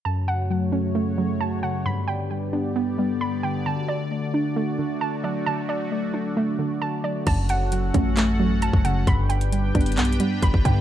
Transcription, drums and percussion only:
7.27 kick loud
7.27 closed hi-hat medium
7.27 crash loud
7.49 closed hi-hat medium
7.72 closed hi-hat medium
7.94 kick loud
7.94 closed hi-hat medium
8.17 clap loud
8.17 closed hi-hat medium
8.62 closed hi-hat medium
8.73 kick loud
8.85 closed hi-hat medium
9.07 kick loud
9.07 closed hi-hat medium
9.30 closed hi-hat medium
9.30 open hi-hat medium
9.41 closed hi-hat medium
9.52 closed hi-hat medium
9.75 kick loud
9.75 closed hi-hat soft
9.81 closed hi-hat medium
9.86 closed hi-hat medium
9.92 closed hi-hat medium
9.97 clap loud
9.97 closed hi-hat medium
10.05 closed hi-hat medium
10.12 closed hi-hat medium
10.20 closed hi-hat medium
10.42 kick loud
10.42 closed hi-hat medium
10.54 kick loud
10.65 kick loud
10.65 closed hi-hat medium

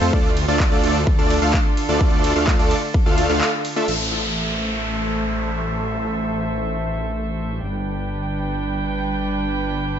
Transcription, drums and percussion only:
0.13 kick loud
0.37 open hi-hat loud
0.37 ride medium
0.60 kick loud
0.60 clap loud
0.84 open hi-hat loud
0.84 ride medium
1.07 kick loud
1.30 open hi-hat loud
1.30 ride medium
1.54 kick loud
1.54 clap loud
1.77 open hi-hat loud
1.77 ride medium
2.01 kick loud
2.24 open hi-hat loud
2.24 ride medium
2.47 kick loud
2.47 clap loud
2.59 open hi-hat medium
2.71 open hi-hat loud
2.71 ride medium
2.94 kick loud
3.18 open hi-hat loud
3.18 ride medium
3.29 clap soft
3.41 clap loud
3.65 open hi-hat loud
3.65 ride medium
3.88 crash medium

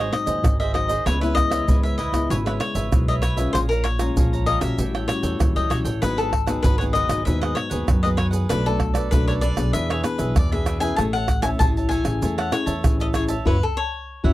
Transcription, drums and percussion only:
0.13 pandeiro medium
0.13 tamborim medium
0.27 pandeiro medium
0.27 shaker medium
0.44 pandeiro medium
0.44 tamborim medium
0.44 shaker medium
0.44 surdo loud
0.61 pandeiro soft
0.61 shaker soft
0.75 pandeiro medium
0.75 tamborim medium
0.89 pandeiro medium
0.89 shaker medium
1.07 pandeiro medium
1.07 tamborim medium
1.07 shaker medium
1.07 surdo medium
1.23 pandeiro soft
1.23 shaker soft
1.37 pandeiro medium
1.37 tamborim medium
1.37 shaker medium
1.37 surdo medium
1.51 pandeiro medium
1.51 tamborim medium
1.51 shaker medium
1.68 pandeiro medium
1.68 shaker medium
1.68 surdo medium
1.85 pandeiro soft
1.85 shaker soft
1.99 pandeiro medium
2.14 pandeiro medium
2.14 tamborim medium
2.14 shaker medium
2.31 pandeiro medium
2.31 shaker medium
2.31 surdo medium
2.47 pandeiro soft
2.47 tamborim medium
2.47 shaker soft
2.61 pandeiro medium
2.61 tamborim medium
2.75 pandeiro medium
2.75 shaker medium
2.92 pandeiro medium
2.92 tamborim medium
2.92 shaker medium
2.92 surdo loud
3.09 pandeiro soft
3.09 shaker soft
3.23 pandeiro medium
3.23 tamborim medium
3.23 shaker medium
3.38 pandeiro medium
3.38 shaker medium
3.55 pandeiro medium
3.55 tamborim medium
3.55 shaker medium
3.55 surdo medium
3.71 pandeiro soft
3.71 shaker soft
3.85 pandeiro medium
3.85 tamborim medium
3.99 pandeiro medium
3.99 tamborim medium
3.99 shaker medium
4.17 pandeiro medium
4.17 shaker medium
4.17 surdo loud
4.33 pandeiro soft
4.33 shaker soft
4.47 pandeiro medium
4.61 pandeiro medium
4.61 tamborim medium
4.61 shaker medium
4.78 pandeiro medium
4.78 shaker medium
4.78 surdo medium
4.95 pandeiro soft
4.95 tamborim medium
4.95 shaker soft
5.09 pandeiro medium
5.09 tamborim medium
5.09 shaker medium
5.23 pandeiro medium
5.23 shaker medium
5.40 pandeiro medium
5.40 tamborim medium
5.40 shaker medium
5.40 surdo loud
5.57 pandeiro soft
5.57 shaker soft
5.71 pandeiro medium
5.71 tamborim medium
5.71 shaker medium
5.85 pandeiro medium
5.85 shaker medium
6.03 pandeiro medium
6.03 tamborim medium
6.03 shaker medium
6.03 surdo medium
6.19 pandeiro soft
6.19 shaker soft
6.33 pandeiro medium
6.33 tamborim medium
6.33 surdo medium
6.47 pandeiro medium
6.47 tamborim medium
6.47 shaker medium
6.64 pandeiro medium
6.64 shaker medium
6.64 surdo medium
6.81 pandeiro soft
6.81 shaker soft
6.95 pandeiro medium
6.95 shaker medium
7.09 pandeiro medium
7.09 tamborim medium
7.09 shaker medium
7.27 pandeiro medium
7.27 shaker medium
7.27 surdo medium
7.43 pandeiro soft
7.43 tamborim medium
7.43 shaker soft
7.57 pandeiro medium
7.57 tamborim medium
7.71 pandeiro medium
7.71 shaker medium
7.88 pandeiro medium
7.88 tamborim medium
7.88 shaker medium
7.88 surdo loud
8.04 pandeiro soft
8.04 shaker soft
8.18 pandeiro medium
8.18 tamborim medium
8.33 pandeiro medium
8.33 shaker medium
8.50 pandeiro medium
8.50 tamborim medium
8.50 shaker medium
8.50 surdo medium
8.66 pandeiro soft
8.66 shaker soft
8.80 pandeiro medium
8.80 tamborim medium
8.80 surdo medium
8.95 pandeiro medium
8.95 tamborim medium
8.95 shaker medium
9.12 pandeiro medium
9.12 shaker medium
9.12 surdo medium
9.29 pandeiro soft
9.29 shaker soft
9.42 pandeiro medium
9.42 shaker medium
9.57 pandeiro medium
9.57 tamborim medium
9.57 shaker medium
9.74 pandeiro medium
9.74 shaker medium
9.74 surdo medium
9.90 pandeiro soft
9.90 tamborim medium
9.90 shaker soft
10.04 pandeiro medium
10.04 tamborim medium
10.04 shaker medium
10.19 pandeiro medium
10.19 shaker medium
10.36 pandeiro medium
10.36 tamborim medium
10.36 shaker medium
10.36 surdo loud
10.52 pandeiro soft
10.52 shaker soft
10.66 pandeiro medium
10.66 tamborim medium
10.66 shaker medium
10.81 pandeiro medium
10.81 shaker medium
10.98 pandeiro medium
10.98 tamborim medium
10.98 shaker medium
10.98 surdo medium
11.15 pandeiro soft
11.15 shaker soft
11.28 pandeiro medium
11.28 tamborim medium
11.28 shaker medium
11.28 surdo medium
11.43 pandeiro medium
11.43 tamborim medium
11.43 shaker medium
11.60 pandeiro medium
11.60 shaker medium
11.60 surdo loud
11.77 pandeiro soft
11.77 shaker soft
11.91 pandeiro medium
11.91 shaker medium
12.05 pandeiro medium
12.05 tamborim medium
12.05 shaker medium
12.22 pandeiro medium
12.22 shaker medium
12.22 surdo medium
12.39 pandeiro soft
12.39 tamborim medium
12.39 shaker soft
12.52 pandeiro medium
12.52 tamborim medium
12.52 shaker medium
12.67 pandeiro medium
12.67 shaker medium
12.84 pandeiro medium
12.84 tamborim medium
12.84 shaker medium
12.84 surdo loud
13.00 pandeiro soft
13.00 shaker soft
13.14 pandeiro medium
13.14 tamborim medium
13.14 shaker medium
13.28 pandeiro medium
13.28 shaker medium
13.46 surdo medium
14.24 surdo medium

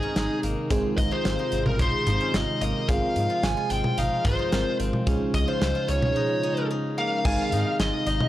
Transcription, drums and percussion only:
0.16 snare loud
0.16 closed hi-hat medium
0.43 closed hi-hat medium
0.70 kick loud
0.70 closed hi-hat medium
0.98 kick medium
0.98 closed hi-hat medium
1.25 snare loud
1.25 closed hi-hat medium
1.52 closed hi-hat medium
1.66 mid tom medium
1.79 kick medium
1.79 closed hi-hat medium
2.07 closed hi-hat medium
2.07 mid tom medium
2.34 snare loud
2.34 closed hi-hat medium
2.61 closed hi-hat medium
2.89 kick loud
2.89 closed hi-hat medium
3.16 closed hi-hat medium
3.43 snare loud
3.43 closed hi-hat medium
3.70 closed hi-hat medium
3.84 mid tom medium
3.98 closed hi-hat medium
4.25 kick medium
4.25 closed hi-hat medium
4.25 mid tom loud
4.52 snare loud
4.52 closed hi-hat medium
4.80 closed hi-hat medium
4.93 mid tom medium
5.07 kick loud
5.07 closed hi-hat medium
5.34 kick medium
5.34 closed hi-hat medium
5.62 snare loud
5.62 closed hi-hat medium
5.88 closed hi-hat medium
6.02 mid tom medium
7.25 kick loud
7.25 crash loud
7.52 closed hi-hat medium
7.80 snare loud
7.80 closed hi-hat medium
8.07 closed hi-hat medium
8.20 mid tom medium

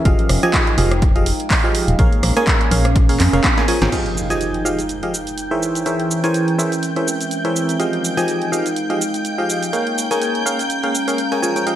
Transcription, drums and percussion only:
0.05 kick loud
0.05 closed hi-hat medium
0.19 closed hi-hat soft
0.29 cross-stick medium
0.29 open hi-hat loud
0.43 closed hi-hat medium
0.54 kick medium
0.54 clap loud
0.54 closed hi-hat medium
0.67 closed hi-hat soft
0.78 open hi-hat loud
0.91 cross-stick medium
0.91 closed hi-hat medium
1.02 kick loud
1.02 closed hi-hat medium
1.16 closed hi-hat soft
1.26 open hi-hat loud
1.40 closed hi-hat medium
1.50 kick medium
1.50 clap loud
1.50 open hi-hat medium
1.75 open hi-hat loud
1.88 closed hi-hat medium
1.99 kick loud
1.99 closed hi-hat medium
2.12 closed hi-hat soft
2.23 cross-stick medium
2.23 open hi-hat loud
2.37 cross-stick medium
2.37 closed hi-hat medium
2.47 kick loud
2.47 clap loud
2.47 closed hi-hat medium
2.61 closed hi-hat soft
2.71 open hi-hat loud
2.85 cross-stick medium
2.85 closed hi-hat medium
2.96 kick loud
2.96 closed hi-hat medium
3.09 open hi-hat medium
3.20 clap medium
3.20 open hi-hat loud
3.33 closed hi-hat medium
3.44 kick loud
3.44 snare medium
3.44 clap loud
3.44 closed hi-hat medium
3.58 snare medium
3.58 closed hi-hat soft
3.68 open hi-hat loud
3.82 snare medium
3.82 closed hi-hat medium
3.92 closed hi-hat medium
3.92 crash medium
3.92 shaker soft
4.06 closed hi-hat soft
4.17 shaker medium
4.30 closed hi-hat medium
4.30 shaker soft
4.41 closed hi-hat medium
4.41 shaker soft
4.54 closed hi-hat soft
4.66 shaker medium
4.79 closed hi-hat soft
4.79 shaker soft
4.89 closed hi-hat medium
4.89 shaker soft
5.03 closed hi-hat soft
5.14 shaker medium
5.27 closed hi-hat medium
5.27 shaker soft
5.38 closed hi-hat medium
5.38 shaker soft
5.63 shaker medium
5.75 closed hi-hat soft
5.75 shaker soft
5.86 closed hi-hat medium
5.86 shaker soft
6.00 closed hi-hat soft
6.11 shaker medium
6.24 closed hi-hat soft
6.24 shaker soft
6.34 closed hi-hat medium
6.34 shaker soft
6.48 closed hi-hat soft
6.59 shaker medium
6.72 closed hi-hat soft
6.72 shaker soft
6.83 closed hi-hat medium
6.83 shaker soft
6.96 closed hi-hat soft
7.08 shaker medium
7.21 closed hi-hat medium
7.21 shaker soft
7.31 closed hi-hat medium
7.31 shaker soft
7.45 closed hi-hat soft
7.56 shaker medium
7.69 closed hi-hat soft
7.69 shaker soft
7.80 closed hi-hat medium
7.80 shaker soft
7.93 closed hi-hat soft
8.05 shaker medium
8.17 closed hi-hat soft
8.17 shaker soft
8.28 closed hi-hat medium
8.28 shaker soft
8.42 closed hi-hat soft
8.53 shaker medium
8.66 closed hi-hat soft
8.66 shaker soft
8.76 closed hi-hat medium
8.76 shaker soft
8.90 closed hi-hat soft
9.01 shaker medium
9.14 closed hi-hat soft
9.14 shaker soft
9.25 closed hi-hat medium
9.25 shaker soft
9.50 shaker medium
9.63 closed hi-hat soft
9.63 shaker soft
9.73 closed hi-hat medium
9.73 shaker soft
9.87 closed hi-hat soft
9.98 shaker medium
10.11 closed hi-hat soft
10.11 shaker soft
10.22 closed hi-hat medium
10.22 shaker soft
10.35 closed hi-hat soft
10.46 shaker medium
10.59 closed hi-hat soft
10.59 shaker soft
10.70 closed hi-hat medium
10.70 shaker soft
10.83 closed hi-hat soft
10.95 shaker medium
11.08 closed hi-hat soft
11.08 shaker soft
11.18 closed hi-hat medium
11.18 shaker soft
11.32 closed hi-hat soft
11.43 shaker medium
11.56 closed hi-hat soft
11.56 shaker soft
11.67 closed hi-hat medium
11.67 shaker soft

